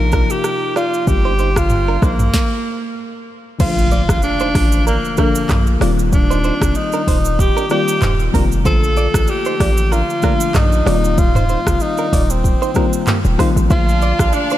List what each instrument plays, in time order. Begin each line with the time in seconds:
Already playing: 808-style bass A#1, fm electric piano C3 F3 A#3 D#4 F4, tenor saxophone A#4
0.11 fm electric piano C3 F3 A#3 F4, clean electric guitar D4 A#4, kick, cross-stick, shaker
0.30 tenor saxophone G4, shaker
0.44 cross-stick, shaker
0.76 tenor saxophone F4, clean electric guitar F4 D5, cross-stick, shaker
0.94 shaker
1.06 808-style bass G1, fm electric piano D3 G3 A#3 F4, tenor saxophone G4, kick, shaker
1.25 clean electric guitar D#4 C5
1.39 clean electric guitar D#4 C5, shaker
1.56 tenor saxophone F4, kick, cross-stick, shaker
1.70 mid tom, shaker
1.88 clean electric guitar D4 A#4
2.02 808-style bass A#1, tenor saxophone A#3, clean electric guitar D#4 C5, kick, cross-stick, shaker
2.19 mid tom, shaker
2.34 kick, snare
3.59 808-style bass A#1, fm electric piano D3 F3 A3 A#3 F4, tenor saxophone F4, clean electric guitar F4 C5, kick, crash, impact, shaker
3.78 shaker
3.91 clean electric guitar F4 D5, shaker
4.09 808-style bass A1, kick, cross-stick, shaker
4.22 tenor saxophone D4, shaker
4.40 clean electric guitar D#4 C5, shaker
4.55 808-style bass A1, clean electric guitar F4 D5, kick, cross-stick, open hi-hat, shaker
4.72 shaker
4.87 tenor saxophone A#3, clean electric guitar D4 A#4, shaker
5.05 shaker
5.16 fm electric piano D3 F3 A#3 D4 A4, tenor saxophone A#3, clean electric guitar D4 A#4, kick, cross-stick, shaker
5.35 shaker
5.49 808-style bass A#1, cross-stick, clap, mid tom, shaker
5.67 shaker
5.80 808-style bass D#1, fm electric piano D#3 G3 A#3 C4 F4, clean electric guitar F4 D5, cross-stick, open hi-hat, shaker
5.99 shaker
6.13 tenor saxophone D4, kick, shaker
6.31 clean electric guitar D#4 C5, shaker
6.44 clean electric guitar D#4 C5, shaker
6.62 808-style bass F1, kick, cross-stick, shaker
6.75 tenor saxophone D#4, shaker
6.92 clean electric guitar D4 A#4, shaker
7.08 808-style bass D#1, clean electric guitar D#4 C5, kick, open hi-hat, shaker
7.25 shaker
7.39 tenor saxophone G4, kick, shaker
7.57 clean electric guitar D4 A#4, shaker
7.69 fm electric piano D#3 G3 A#3 C4 F4, clean electric guitar F4 D5, tenor saxophone G4, cross-stick, shaker
7.88 shaker
8.02 808-style bass D#1, clean electric guitar D#4 C5, clap, mid tom, shaker
8.20 shaker
8.32 808-style bass F1, fm electric piano D#3 G3 A#3 C4 F4, clean electric guitar D4 A#4, kick, open hi-hat, shaker
8.52 shaker
8.64 808-style bass A#1, fm electric piano D3 F3 A3 A#3 F4, clean electric guitar F4 C5, tenor saxophone A4, kick, shaker
8.84 shaker
8.96 clean electric guitar F4 D5, shaker
9.14 808-style bass A1, kick, cross-stick, shaker
9.27 tenor saxophone G4, shaker
9.45 clean electric guitar D#4 C5, shaker
9.60 808-style bass A1, clean electric guitar F4 D5, kick, cross-stick, open hi-hat, shaker
9.77 shaker
9.92 clean electric guitar D4 A#4, tenor saxophone F4, shaker
10.10 shaker
10.21 fm electric piano D3 F3 A3 A#3 D4, clean electric guitar D4 A#4, kick, cross-stick, shaker
10.40 shaker
10.55 808-style bass A#1, tenor saxophone D#4, cross-stick, clap, mid tom, shaker
10.72 shaker
10.85 808-style bass D#1, fm electric piano D#3 G3 A#3 C4 F4, clean electric guitar F4 D5, cross-stick, open hi-hat, shaker
11.04 shaker
11.18 tenor saxophone F4, kick, shaker
11.35 clean electric guitar D#4 C5, mid tom, shaker
11.49 clean electric guitar D#4 C5, shaker
11.67 808-style bass F1, kick, cross-stick, shaker
11.80 tenor saxophone D#4, shaker
11.97 clean electric guitar D4 A#4, shaker
12.13 808-style bass D#1, clean electric guitar F4 D5, kick, open hi-hat, shaker
12.30 tenor saxophone C4, shaker
12.44 kick, shaker
12.62 clean electric guitar D#4 C5, shaker
12.74 fm electric piano D#3 G3 A#3 C4 F4, clean electric guitar D4 A#4, kick, cross-stick, shaker
12.93 shaker
13.07 clean electric guitar A#3 G4, clap, mid tom, shaker
13.25 808-style bass D#1, shaker
13.37 fm electric piano D#3 G3 A#3 C4 F4, clean electric guitar D#4 C5, kick, cross-stick, open hi-hat, shaker
13.56 808-style bass A1, shaker
13.69 808-style bass A#1, fm electric piano D3 F3 A3 A#3 F4, string section F4 D5 F5 A5, tenor saxophone F4, clean electric guitar F4 C5, kick, shaker
13.89 shaker
14.02 clean electric guitar F4 D5, shaker
14.19 808-style bass A1, kick, cross-stick, shaker
14.33 tenor saxophone D4, shaker
14.50 clean electric guitar D#4 C5, shaker